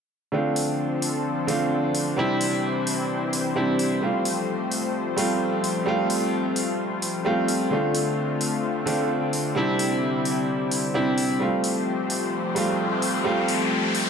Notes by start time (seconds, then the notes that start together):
0.32 D3 F3 A3 C4 D4 F4 A4 C5
0.56 open hi-hat
1.02 open hi-hat
1.47 D3 A3 C4 D4 F4, open hi-hat
1.95 open hi-hat
2.16 C3 E3 G3 C4 D4 E4 G4
2.41 open hi-hat
2.87 open hi-hat
3.33 open hi-hat
3.56 C3 G3 C4 D4 E4
3.79 open hi-hat
4.01 F3 G3 A3 C4 F4
4.25 open hi-hat
4.72 open hi-hat
5.17 G3 A3 C4 F4, open hi-hat
5.64 open hi-hat
5.86 G3 A3 C4 F4
6.10 open hi-hat
6.56 open hi-hat
7.02 open hi-hat
7.25 G3 A3 C4 F4
7.48 open hi-hat
7.70 D3 A3 C4 D4 F4
7.95 open hi-hat
8.41 open hi-hat
8.86 D3 A3 C4 D4 F4, open hi-hat
9.33 open hi-hat
9.55 C3 G3 C4 D4 E4
9.79 open hi-hat
10.25 open hi-hat
10.71 open hi-hat
10.94 C3 G3 C4 D4 E4
11.18 open hi-hat
11.40 F3 G3 A3 C4 F4 G4 C5, riser
11.64 open hi-hat
12.10 open hi-hat
12.55 G3 A3 C4 F4, open hi-hat
13.02 open hi-hat
13.24 G3 A3 C4 F4
13.48 open hi-hat
13.95 open hi-hat